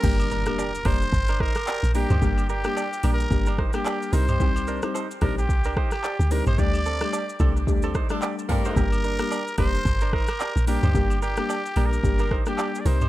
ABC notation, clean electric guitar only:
X:1
M:4/4
L:1/16
Q:"Swing 16ths" 1/4=110
K:Gm
V:1 name="Clean electric guitar"
[B,G] z [DB] z [Gd] z [DB] z2 [DB] [Ec] z [Gd] z [DB] [Ec] | [B,G] z [DB] z [Gd] z [DB] z2 [DB] [Ec] z [Gd] z [EB] [Ec] | [CG] z [DB] z [Ec] z [DB] z2 [DB] [Ec] z [Gd] z [DB] [Ec] | [DG] z [CA] z [Gd] z [CA] z2 [CA] [Ec] z [Gd] z [CA] [Ec] |
[B,G] z [DB] z [Gd] z [DB] z2 [DB] [Ec] z [Gd] z [DB] [Ec] | [B,G] z [DB] z [Gd] z [DB] z2 [DB] [Ec] z [Gd] z [EB] [Ec] |]